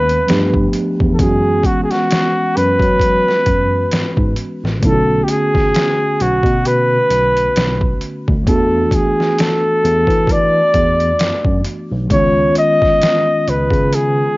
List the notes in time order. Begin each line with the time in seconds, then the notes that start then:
Already playing: D#2 D#3 G#3 B3 C#4 B4 F5
0.09 closed hi-hat
0.27 G2 F3 A3 B3 D4 G4, snare, closed hi-hat
0.54 kick
0.73 closed hi-hat
1.00 E2, kick
1.14 E3 A4
1.18 F#2 G#3 B3 C#4 G#4, kick, closed hi-hat
1.23 F#4
1.64 F#4, kick, closed hi-hat
1.84 G#4
1.91 F#4, snare, closed hi-hat
2.11 snare, closed hi-hat
2.57 F#2 B4, closed hi-hat
2.79 F#3, kick, closed hi-hat
3.00 kick, closed hi-hat
3.28 snare
3.46 F#2, kick, closed hi-hat
3.92 G#2, snare, closed hi-hat
4.17 G#2, kick
4.36 closed hi-hat
4.64 A1, snare
4.80 B1 D3 A3 B3, kick, closed hi-hat
4.84 C#4 E4 A4
4.93 F#4
5.24 G4
5.28 G#4, closed hi-hat
5.55 kick, snare
5.75 snare, closed hi-hat
6.20 B1 F#4, closed hi-hat
6.43 B2, kick, closed hi-hat
6.65 B4, closed hi-hat
7.10 B1, closed hi-hat
7.37 closed hi-hat
7.56 B1, snare, closed hi-hat
7.81 kick
8.01 closed hi-hat
8.28 D2, kick
8.44 E2 E3 A3 B3, kick, closed hi-hat
8.48 D4 F#4 A4
8.91 G#4, kick, closed hi-hat
9.20 snare
9.38 A4, snare, closed hi-hat
9.84 E2, closed hi-hat
10.07 E3, kick, closed hi-hat
10.27 kick, closed hi-hat
10.32 D5
10.74 E2, kick, closed hi-hat
11.00 closed hi-hat
11.19 snare, closed hi-hat
11.45 F#2, kick
11.64 closed hi-hat
11.92 B1
12.08 C#2 D#3 G#3 B3, kick, closed hi-hat
12.12 C#4 F4 C#5
12.55 D#5, closed hi-hat
12.82 kick, snare
13.01 snare, closed hi-hat
13.48 C#2 B4, closed hi-hat
13.70 C#3, kick, closed hi-hat
13.93 G#4, closed hi-hat